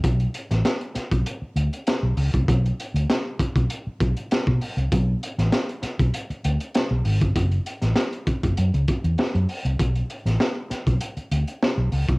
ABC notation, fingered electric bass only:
X:1
M:4/4
L:1/16
Q:1/4=98
K:Bdor
V:1 name="Fingered electric bass" clef=bass
B,,,2 z A,,, z3 B,,, z2 D,, z2 B,,, C,, =C,, | B,,,2 z D,, z3 B,,, z2 B,,, z2 B,, z =C,, | B,,,2 z A,,, z3 B,,, z2 D,, z2 B,,, G,,, =G,,, | F,,,2 z A,,, z3 F,,, F,, C,, z E,, z F,, z =C,, |
B,,,2 z A,,, z3 B,,, z2 D,, z2 B,,, C,, =C,, |]